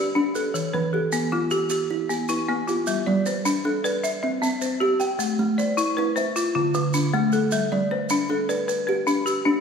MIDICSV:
0, 0, Header, 1, 4, 480
1, 0, Start_track
1, 0, Tempo, 387347
1, 682, Time_signature, 12, 3, 24, 8
1, 11901, End_track
2, 0, Start_track
2, 0, Title_t, "Kalimba"
2, 0, Program_c, 0, 108
2, 0, Note_on_c, 0, 71, 66
2, 0, Note_on_c, 0, 74, 65
2, 201, Note_on_c, 0, 62, 75
2, 428, Note_off_c, 0, 71, 0
2, 443, Note_on_c, 0, 71, 63
2, 681, Note_off_c, 0, 74, 0
2, 682, Note_off_c, 0, 62, 0
2, 921, Note_on_c, 0, 52, 83
2, 1162, Note_off_c, 0, 71, 0
2, 1164, Note_on_c, 0, 67, 64
2, 1402, Note_off_c, 0, 52, 0
2, 1643, Note_on_c, 0, 59, 89
2, 1883, Note_off_c, 0, 67, 0
2, 1887, Note_on_c, 0, 69, 59
2, 2122, Note_off_c, 0, 59, 0
2, 2360, Note_on_c, 0, 64, 80
2, 2601, Note_on_c, 0, 67, 62
2, 2604, Note_off_c, 0, 69, 0
2, 2841, Note_off_c, 0, 64, 0
2, 2845, Note_on_c, 0, 71, 58
2, 3086, Note_on_c, 0, 59, 79
2, 3318, Note_off_c, 0, 67, 0
2, 3332, Note_on_c, 0, 67, 60
2, 3563, Note_off_c, 0, 71, 0
2, 3564, Note_off_c, 0, 59, 0
2, 3808, Note_on_c, 0, 55, 83
2, 4042, Note_on_c, 0, 71, 64
2, 4047, Note_off_c, 0, 67, 0
2, 4285, Note_off_c, 0, 55, 0
2, 4523, Note_on_c, 0, 62, 83
2, 4761, Note_off_c, 0, 71, 0
2, 4766, Note_on_c, 0, 74, 66
2, 5002, Note_off_c, 0, 62, 0
2, 5250, Note_on_c, 0, 60, 85
2, 5483, Note_off_c, 0, 74, 0
2, 5484, Note_on_c, 0, 76, 64
2, 5725, Note_off_c, 0, 60, 0
2, 5964, Note_on_c, 0, 67, 85
2, 6202, Note_off_c, 0, 76, 0
2, 6203, Note_on_c, 0, 79, 69
2, 6441, Note_off_c, 0, 67, 0
2, 6681, Note_on_c, 0, 57, 88
2, 6921, Note_off_c, 0, 79, 0
2, 6927, Note_on_c, 0, 72, 61
2, 7160, Note_off_c, 0, 57, 0
2, 7414, Note_on_c, 0, 64, 91
2, 7643, Note_off_c, 0, 72, 0
2, 7652, Note_on_c, 0, 76, 74
2, 7886, Note_off_c, 0, 64, 0
2, 8125, Note_on_c, 0, 50, 85
2, 8359, Note_on_c, 0, 65, 71
2, 8365, Note_off_c, 0, 76, 0
2, 8602, Note_off_c, 0, 50, 0
2, 8848, Note_on_c, 0, 57, 88
2, 9078, Note_off_c, 0, 65, 0
2, 9097, Note_on_c, 0, 69, 58
2, 9323, Note_off_c, 0, 57, 0
2, 9570, Note_on_c, 0, 55, 83
2, 9806, Note_on_c, 0, 71, 65
2, 9808, Note_off_c, 0, 69, 0
2, 10045, Note_off_c, 0, 55, 0
2, 10279, Note_on_c, 0, 62, 87
2, 10523, Note_off_c, 0, 71, 0
2, 10523, Note_on_c, 0, 74, 68
2, 10759, Note_off_c, 0, 62, 0
2, 11012, Note_on_c, 0, 67, 89
2, 11241, Note_off_c, 0, 74, 0
2, 11251, Note_on_c, 0, 71, 61
2, 11486, Note_off_c, 0, 67, 0
2, 11723, Note_on_c, 0, 62, 90
2, 11901, Note_off_c, 0, 62, 0
2, 11901, Note_off_c, 0, 71, 0
2, 11901, End_track
3, 0, Start_track
3, 0, Title_t, "Marimba"
3, 0, Program_c, 1, 12
3, 0, Note_on_c, 1, 62, 81
3, 0, Note_on_c, 1, 67, 63
3, 176, Note_off_c, 1, 62, 0
3, 190, Note_on_c, 1, 62, 82
3, 438, Note_on_c, 1, 69, 58
3, 671, Note_on_c, 1, 52, 75
3, 675, Note_off_c, 1, 67, 0
3, 676, Note_off_c, 1, 62, 0
3, 911, Note_on_c, 1, 71, 69
3, 920, Note_off_c, 1, 69, 0
3, 1152, Note_on_c, 1, 69, 62
3, 1157, Note_off_c, 1, 52, 0
3, 1395, Note_on_c, 1, 59, 83
3, 1637, Note_off_c, 1, 71, 0
3, 1639, Note_on_c, 1, 65, 58
3, 1874, Note_on_c, 1, 67, 83
3, 1877, Note_off_c, 1, 69, 0
3, 1878, Note_off_c, 1, 59, 0
3, 2104, Note_off_c, 1, 67, 0
3, 2119, Note_on_c, 1, 67, 68
3, 2360, Note_off_c, 1, 65, 0
3, 2595, Note_on_c, 1, 59, 71
3, 2836, Note_on_c, 1, 64, 66
3, 2841, Note_off_c, 1, 67, 0
3, 3063, Note_off_c, 1, 59, 0
3, 3078, Note_on_c, 1, 59, 78
3, 3315, Note_on_c, 1, 65, 59
3, 3557, Note_on_c, 1, 55, 76
3, 3559, Note_off_c, 1, 64, 0
3, 3560, Note_off_c, 1, 59, 0
3, 3798, Note_off_c, 1, 65, 0
3, 3798, Note_on_c, 1, 74, 65
3, 4039, Note_off_c, 1, 55, 0
3, 4042, Note_on_c, 1, 72, 66
3, 4280, Note_on_c, 1, 62, 85
3, 4519, Note_off_c, 1, 74, 0
3, 4524, Note_on_c, 1, 69, 58
3, 4760, Note_off_c, 1, 62, 0
3, 4761, Note_off_c, 1, 72, 0
3, 4762, Note_on_c, 1, 71, 83
3, 5001, Note_off_c, 1, 71, 0
3, 5001, Note_on_c, 1, 76, 76
3, 5224, Note_off_c, 1, 76, 0
3, 5239, Note_on_c, 1, 76, 67
3, 5242, Note_off_c, 1, 69, 0
3, 5475, Note_on_c, 1, 60, 81
3, 5720, Note_on_c, 1, 72, 67
3, 5953, Note_on_c, 1, 67, 81
3, 5957, Note_off_c, 1, 60, 0
3, 5959, Note_off_c, 1, 76, 0
3, 6192, Note_on_c, 1, 79, 67
3, 6431, Note_on_c, 1, 57, 78
3, 6436, Note_off_c, 1, 67, 0
3, 6439, Note_off_c, 1, 72, 0
3, 6676, Note_off_c, 1, 79, 0
3, 6915, Note_off_c, 1, 57, 0
3, 6916, Note_on_c, 1, 74, 67
3, 7154, Note_on_c, 1, 64, 88
3, 7397, Note_on_c, 1, 71, 65
3, 7631, Note_on_c, 1, 72, 87
3, 7636, Note_off_c, 1, 64, 0
3, 7637, Note_off_c, 1, 74, 0
3, 7875, Note_off_c, 1, 72, 0
3, 7880, Note_on_c, 1, 65, 69
3, 8105, Note_off_c, 1, 65, 0
3, 8117, Note_off_c, 1, 71, 0
3, 8119, Note_on_c, 1, 65, 68
3, 8360, Note_on_c, 1, 50, 82
3, 8599, Note_on_c, 1, 62, 68
3, 8839, Note_off_c, 1, 50, 0
3, 8839, Note_off_c, 1, 65, 0
3, 8842, Note_on_c, 1, 57, 89
3, 9081, Note_on_c, 1, 69, 66
3, 9319, Note_off_c, 1, 62, 0
3, 9320, Note_off_c, 1, 57, 0
3, 9322, Note_on_c, 1, 55, 80
3, 9560, Note_off_c, 1, 69, 0
3, 9566, Note_on_c, 1, 74, 71
3, 9800, Note_off_c, 1, 55, 0
3, 9805, Note_on_c, 1, 72, 71
3, 10045, Note_on_c, 1, 62, 86
3, 10283, Note_off_c, 1, 74, 0
3, 10284, Note_on_c, 1, 69, 64
3, 10522, Note_off_c, 1, 62, 0
3, 10522, Note_off_c, 1, 72, 0
3, 10522, Note_on_c, 1, 71, 78
3, 10742, Note_off_c, 1, 71, 0
3, 10757, Note_on_c, 1, 71, 69
3, 10976, Note_off_c, 1, 71, 0
3, 10991, Note_on_c, 1, 71, 71
3, 11002, Note_off_c, 1, 69, 0
3, 11237, Note_on_c, 1, 62, 85
3, 11473, Note_on_c, 1, 67, 73
3, 11703, Note_off_c, 1, 62, 0
3, 11716, Note_off_c, 1, 71, 0
3, 11718, Note_on_c, 1, 62, 85
3, 11901, Note_off_c, 1, 62, 0
3, 11901, Note_off_c, 1, 67, 0
3, 11901, End_track
4, 0, Start_track
4, 0, Title_t, "Drums"
4, 436, Note_on_c, 9, 70, 58
4, 560, Note_off_c, 9, 70, 0
4, 681, Note_on_c, 9, 70, 64
4, 805, Note_off_c, 9, 70, 0
4, 1391, Note_on_c, 9, 70, 77
4, 1515, Note_off_c, 9, 70, 0
4, 1867, Note_on_c, 9, 70, 54
4, 1991, Note_off_c, 9, 70, 0
4, 2102, Note_on_c, 9, 70, 76
4, 2225, Note_off_c, 9, 70, 0
4, 2600, Note_on_c, 9, 70, 55
4, 2724, Note_off_c, 9, 70, 0
4, 2833, Note_on_c, 9, 70, 70
4, 2957, Note_off_c, 9, 70, 0
4, 3320, Note_on_c, 9, 70, 57
4, 3444, Note_off_c, 9, 70, 0
4, 3553, Note_on_c, 9, 70, 73
4, 3677, Note_off_c, 9, 70, 0
4, 4041, Note_on_c, 9, 70, 58
4, 4164, Note_off_c, 9, 70, 0
4, 4281, Note_on_c, 9, 70, 77
4, 4405, Note_off_c, 9, 70, 0
4, 4770, Note_on_c, 9, 70, 62
4, 4894, Note_off_c, 9, 70, 0
4, 5006, Note_on_c, 9, 70, 73
4, 5130, Note_off_c, 9, 70, 0
4, 5489, Note_on_c, 9, 70, 65
4, 5613, Note_off_c, 9, 70, 0
4, 5718, Note_on_c, 9, 70, 72
4, 5842, Note_off_c, 9, 70, 0
4, 6196, Note_on_c, 9, 70, 64
4, 6320, Note_off_c, 9, 70, 0
4, 6439, Note_on_c, 9, 70, 78
4, 6563, Note_off_c, 9, 70, 0
4, 6926, Note_on_c, 9, 70, 66
4, 7050, Note_off_c, 9, 70, 0
4, 7159, Note_on_c, 9, 70, 73
4, 7283, Note_off_c, 9, 70, 0
4, 7640, Note_on_c, 9, 70, 60
4, 7764, Note_off_c, 9, 70, 0
4, 7885, Note_on_c, 9, 70, 75
4, 8009, Note_off_c, 9, 70, 0
4, 8355, Note_on_c, 9, 70, 59
4, 8479, Note_off_c, 9, 70, 0
4, 8593, Note_on_c, 9, 70, 74
4, 8717, Note_off_c, 9, 70, 0
4, 9073, Note_on_c, 9, 70, 58
4, 9197, Note_off_c, 9, 70, 0
4, 9311, Note_on_c, 9, 70, 71
4, 9435, Note_off_c, 9, 70, 0
4, 10030, Note_on_c, 9, 70, 80
4, 10154, Note_off_c, 9, 70, 0
4, 10527, Note_on_c, 9, 70, 56
4, 10651, Note_off_c, 9, 70, 0
4, 10765, Note_on_c, 9, 70, 70
4, 10889, Note_off_c, 9, 70, 0
4, 11241, Note_on_c, 9, 70, 59
4, 11364, Note_off_c, 9, 70, 0
4, 11483, Note_on_c, 9, 70, 70
4, 11607, Note_off_c, 9, 70, 0
4, 11901, End_track
0, 0, End_of_file